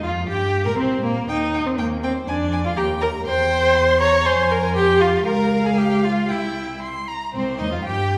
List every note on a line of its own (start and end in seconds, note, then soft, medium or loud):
0.02 0.29 F2 medium
0.02 0.11 F4 medium
0.02 0.28 F4 medium
0.02 0.11 F5 medium
0.27 0.67 G2 medium
0.27 0.64 G4 medium
0.27 0.67 G4 medium
0.27 0.65 G5 medium
0.65 0.77 A#2 medium
0.65 0.77 A#4 medium
0.65 0.77 A#5 medium
0.77 1.01 C2 medium
0.77 1.02 C4 medium
0.77 1.04 C5 medium
1.02 1.27 A#2 medium
1.02 1.11 A#3 medium
1.02 1.28 A#3 medium
1.02 1.27 A#4 medium
1.28 1.72 D#2 medium
1.28 1.68 D#4 medium
1.28 1.65 D#5 medium
1.28 1.37 G5 medium
1.54 1.62 G5 soft
1.65 1.80 C4 medium
1.65 1.70 C5 medium
1.78 2.21 D#2 medium
1.78 2.03 A#3 medium
1.78 1.86 A#4 medium
1.78 1.86 G5 medium
2.03 2.11 C4 medium
2.03 2.29 C5 medium
2.03 2.11 G5 soft
2.27 2.71 F2 medium
2.27 2.64 D4 medium
2.27 2.66 D5 medium
2.27 2.36 G#5 medium
2.52 2.60 G#5 medium
2.64 2.70 F4 medium
2.64 2.79 F5 medium
2.76 3.20 D#2 medium
2.76 2.84 G4 medium
2.76 3.03 G5 medium
2.76 2.85 A#5 soft
3.01 3.09 A#4 medium
3.01 3.09 A#5 soft
3.01 3.25 A#5 medium
3.25 4.27 E2 medium
3.25 3.99 C5 loud
3.25 3.76 G5 medium
3.25 4.02 C6 medium
3.75 4.01 C6 medium
4.00 4.27 C#5 loud
4.00 4.27 A#5 medium
4.00 4.27 C#6 medium
4.25 5.25 F2 medium
4.25 4.52 C5 medium
4.25 4.74 G#5 medium
4.25 4.52 C6 medium
4.50 4.76 A#4 medium
4.50 4.75 A#5 medium
4.75 5.03 G4 loud
4.75 5.02 G5 medium
4.75 5.24 C6 medium
5.00 5.26 F4 medium
5.00 5.25 F5 medium
5.25 6.31 C#2 medium
5.25 5.68 A#4 medium
5.25 6.30 F5 medium
5.25 5.65 A#5 medium
5.64 5.79 G#4 medium
5.64 5.78 G#5 medium
5.77 6.06 G4 medium
5.77 6.03 G5 medium
6.04 6.32 F4 medium
6.04 6.12 F5 medium
6.29 7.14 C2 medium
6.29 6.83 E4 medium
6.29 6.81 E5 medium
6.29 6.77 G5 medium
6.82 7.09 C6 medium
7.08 7.33 A#5 medium
7.34 7.61 C2 medium
7.34 7.57 C4 medium
7.34 7.58 C4 medium
7.34 7.60 C5 medium
7.59 7.74 D#2 medium
7.59 7.64 D#4 medium
7.59 7.72 D#4 medium
7.59 7.74 D#5 medium
7.72 7.85 F2 medium
7.72 7.84 F4 medium
7.72 7.87 F4 medium
7.72 7.84 F5 medium
7.84 8.18 G2 medium
7.84 8.18 G4 medium
7.84 8.18 G5 medium